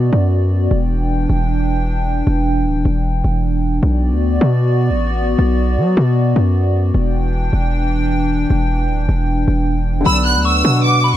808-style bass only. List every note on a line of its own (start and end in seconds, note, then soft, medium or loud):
0.00 0.11 B2 loud
0.13 0.69 F#2 loud
0.71 1.27 E1 loud
1.29 2.23 E1 loud
2.27 2.67 E1 loud
2.66 2.77 D1 loud
2.76 2.85 E1 loud
2.85 3.23 E1 loud
3.24 3.80 E1 loud
3.83 4.13 B1 loud
4.12 4.40 D2 loud
4.41 4.91 B2 loud
4.90 5.36 A1 loud
5.39 5.79 B1 loud
5.78 5.96 F#3 loud
5.97 6.34 B2 loud
6.36 6.92 F#2 loud
6.94 7.51 E1 loud
7.53 8.46 E1 loud
8.50 8.91 E1 loud
8.89 9.01 D1 loud
8.99 9.08 E1 loud
9.09 9.46 E1 loud
9.48 10.04 E1 loud
10.06 10.37 B1 loud
10.35 10.63 D2 loud
10.65 11.15 B2 loud
11.13 11.17 A1 loud